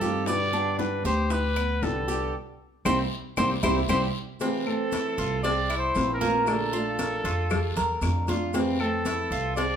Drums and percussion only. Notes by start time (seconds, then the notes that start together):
0.01 high bongo, high conga, short guiro, maracas
0.26 high bongo, high conga, long guiro, maracas
0.53 high conga, claves, maracas
0.79 high bongo, high conga, short guiro, maracas
1.05 high conga, short guiro, maracas
1.30 high bongo, long guiro, maracas
1.57 high conga, claves, maracas
1.82 high bongo, low bongo, high conga, short guiro, maracas
2.08 short guiro, maracas
2.85 high bongo, high conga, long guiro, claves, maracas
3.37 high bongo, high conga, long guiro, claves, maracas
3.63 high bongo, high conga, long guiro, claves, maracas
3.89 high bongo, high conga, long guiro, claves, maracas
4.40 cowbell, high conga, long guiro, maracas
4.67 high conga, claves
4.92 cowbell, high conga, short guiro, maracas
5.18 high conga, short guiro, maracas
5.44 cowbell, high conga, long guiro, maracas
5.70 cowbell, high conga, claves
5.95 cowbell, high conga, short guiro, maracas
6.21 high conga, short guiro, maracas
6.47 cowbell, high conga, long guiro, claves, maracas
6.73 high conga, maracas
6.99 cowbell, high conga, short guiro, maracas
7.25 cowbell, high conga, short guiro, maracas
7.50 cowbell, high conga, low conga, long guiro, claves, maracas
7.76 cowbell, high conga, low conga, maracas
8.02 cowbell, high conga, short guiro, claves, maracas
8.27 cowbell, high conga, short guiro, maracas
8.54 cowbell, long guiro, maracas
8.80 high conga, claves
9.05 cowbell, high conga, short guiro, maracas
9.31 high conga, short guiro, maracas
9.57 cowbell, high conga, long guiro, maracas